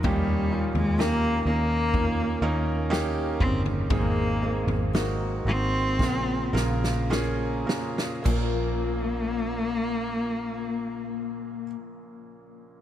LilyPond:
<<
  \new Staff \with { instrumentName = "Felt piano" } { \time 4/4 \key bes \minor \tempo 4 = 56 <bes des' ees' g'>8 <bes des' ees' f'>8 <bes des' ees' g'>8 <bes des' ees' bes'>8 <bes des' ees' f'>8 <bes des' ees' bes'>8 <bes des' ees' g'>8 <des bes ees'>8 | <bes c' ees' aes'>8 <bes c' ees' aes'>8 <bes c' ees' ges'>8 <bes c' ees' ges'>8 <des bes f' bes'>8 <des bes f' bes'>8 <bes des' f' aes'>8 <bes des' f' bes'>8 | <bes des' f'>1 | }
  \new Staff \with { instrumentName = "Felt piano" } { \clef bass \time 4/4 \key bes \minor bes,4. r2 r8 | <aes, ees>4. r8 <bes, f>4. r8 | bes,,1 | }
  \new Staff \with { instrumentName = "Nylon-string guitar" } { \time 4/4 \key bes \minor ees4 <des' g' bes'>4 bes8 des'8 <g' bes'>4 | aes4 <c' ees' bes'>4 bes,8 des'8 <des' f' bes'>4 | <bes, f bes des' f' bes'>1 | }
  \new Staff \with { instrumentName = "Cello" } { \time 4/4 \key bes \minor g8. aes16 bes8 bes4. r8 c'8 | bes4 r8 c'4. r4 | bes1 | }
  \new Staff \with { instrumentName = "Fingered electric bass" } { \clef bass \time 4/4 \key bes \minor ees,8. ees,8. ees,4 ees,4 g,,8 | aes,,8. aes,,8. aes,,8 bes,,8 bes,,4 r8 | bes,,1 | }
  \new DrumStaff \with { instrumentName = "Drums" } \drummode { \time 4/4 <bd tomfh>8. tomfh16 sn4 <bd tomfh>4 sn8 <bd tomfh>16 tomfh16 | <bd tomfh>8. tomfh16 sn4 <bd sn>8 sn16 sn16 sn8 sn16 sn16 | <cymc bd>4 r4 r4 r4 | }
>>